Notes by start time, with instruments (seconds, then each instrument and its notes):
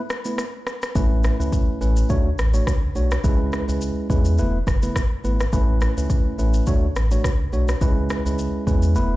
0.10 cross-stick, shaker
0.25 tine electric piano A3 B3 E4 B4, shaker
0.38 cross-stick, shaker
0.67 cross-stick, shaker
0.82 cross-stick, shaker
0.95 sub bass A1, tine electric piano A3 C#4 E4 B4, kick, shaker
1.24 cross-stick, shaker
1.39 sub bass C#2, tine electric piano A3 C#4 E4 B4, shaker
1.53 kick, shaker
1.81 sub bass A1, tine electric piano A3 C#4 E4 B4, shaker
1.96 shaker
2.09 sub bass D2, tine electric piano A3 D4 F#4 C#5, kick, shaker
2.38 sub bass A1, cross-stick, shaker
2.53 tine electric piano A3 D4 F#4 C#5, shaker
2.67 sub bass C#2, kick, cross-stick, shaker
2.95 sub bass B1, tine electric piano A3 D4 F#4 C#5, shaker
3.11 cross-stick, shaker
3.24 sub bass C#2, tine electric piano G#3 C#4 E4 B4, kick, shaker
3.52 cross-stick, shaker
3.68 sub bass C#2, tine electric piano G#3 C#4 E4 B4, shaker
3.81 shaker
4.10 sub bass E2, tine electric piano G#3 C#4 E4 B4, kick, shaker
4.25 shaker
4.38 sub bass E1, tine electric piano A3 B3 E4 B4, shaker
4.67 sub bass F#1, kick, cross-stick, shaker
4.83 tine electric piano A3 B3 E4 B4, shaker
4.96 kick, cross-stick, shaker
5.24 sub bass G#1, tine electric piano A3 B3 E4 B4, shaker
5.40 cross-stick, shaker
5.53 sub bass A1, tine electric piano A3 C#4 E4 B4, kick, shaker
5.81 cross-stick, shaker
5.97 sub bass C#2, tine electric piano A3 C#4 E4 B4, shaker
6.10 kick, shaker
6.38 sub bass A1, tine electric piano A3 C#4 E4 B4, shaker
6.54 shaker
6.67 sub bass D2, tine electric piano A3 D4 F#4 C#5, kick, shaker
6.96 sub bass A1, cross-stick, shaker
7.11 tine electric piano A3 D4 F#4 C#5, shaker
7.24 sub bass C#2, kick, cross-stick, shaker
7.53 sub bass B1, tine electric piano A3 D4 F#4 C#5, shaker
7.68 cross-stick, shaker
7.81 sub bass C#2, tine electric piano G#3 C#4 E4 B4, kick, shaker
8.10 cross-stick, shaker
8.25 sub bass C#2, tine electric piano G#3 C#4 E4 B4, shaker
8.39 shaker
8.67 sub bass E2, tine electric piano G#3 C#4 E4 B4, kick, shaker
8.82 shaker
8.95 sub bass E1, tine electric piano A3 B3 E4 B4, shaker